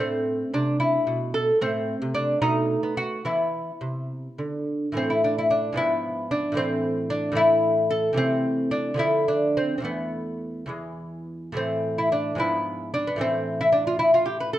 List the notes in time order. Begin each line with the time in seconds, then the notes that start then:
0.00 A2 A3 C4
0.54 C3 D4
0.80 E4
1.07 B2
1.34 A4
1.61 A2 A3 C4
2.02 C3
2.15 D4
2.42 B2 A3 D#4
2.83 B3
2.97 F#4
3.25 E3 B3 E4
3.81 C3
4.38 D3
4.92 A2 E3 A3
4.97 C4
5.10 E4
5.24 D4
5.38 E4
5.50 D4
5.73 G#2 F3 B3
5.77 E4
6.31 D4
6.52 A2 E3 A3
6.57 C4
7.10 D4
7.32 A2 E3 A3
7.37 E4
7.90 A4
8.13 C3 E3 A3
8.17 C4
8.71 D4
8.94 D3 F3 A3
8.99 E4
9.28 D4
9.57 C4
9.78 E2 C4
9.82 E3 A3 B3
10.66 E2 E3 G#3
11.52 A2 E3 A3
11.57 C4
11.98 E4
12.12 D4
12.35 G#2 F3 B3
12.40 E4
12.94 D4
13.07 B3
13.16 A2 E3 A3
13.21 C4
13.61 E4
13.72 D4
13.87 F4
13.99 E4
14.14 F4
14.26 G4
14.40 B4
14.53 A4